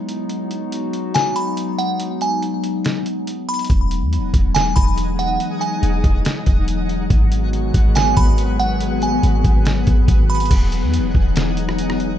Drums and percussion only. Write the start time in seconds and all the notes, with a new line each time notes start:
0.09 closed hi-hat
0.29 closed hi-hat
0.51 closed hi-hat
0.72 closed hi-hat
0.93 closed hi-hat
1.14 snare, closed hi-hat
1.36 closed hi-hat
1.57 closed hi-hat
1.79 closed hi-hat
2.00 closed hi-hat
2.21 closed hi-hat
2.42 closed hi-hat
2.64 closed hi-hat
2.85 snare, closed hi-hat
3.06 closed hi-hat
3.27 closed hi-hat
3.49 closed hi-hat
3.54 closed hi-hat
3.59 closed hi-hat
3.65 closed hi-hat
3.70 kick, closed hi-hat
3.91 closed hi-hat
4.13 closed hi-hat
4.34 kick, closed hi-hat
4.55 snare, closed hi-hat
4.76 kick, closed hi-hat
4.98 closed hi-hat
5.19 closed hi-hat
5.40 closed hi-hat
5.61 closed hi-hat
5.83 closed hi-hat
6.04 kick, closed hi-hat
6.25 snare, closed hi-hat
6.46 kick, closed hi-hat
6.68 closed hi-hat
6.89 closed hi-hat
7.10 kick, closed hi-hat
7.32 closed hi-hat
7.53 closed hi-hat
7.74 kick, closed hi-hat
7.95 snare, closed hi-hat
8.17 kick, closed hi-hat
8.38 closed hi-hat
8.59 closed hi-hat
8.81 closed hi-hat
9.02 closed hi-hat
9.23 closed hi-hat
9.44 kick, closed hi-hat
9.65 snare, closed hi-hat
9.87 kick, closed hi-hat
10.08 kick, closed hi-hat
10.30 closed hi-hat
10.35 closed hi-hat
10.40 closed hi-hat
10.45 closed hi-hat
10.51 kick, closed hi-hat, crash
10.72 closed hi-hat
10.94 closed hi-hat
11.15 kick
11.36 snare, closed hi-hat
11.57 closed hi-hat
11.69 cross-stick
11.79 closed hi-hat
11.90 cross-stick
12.00 closed hi-hat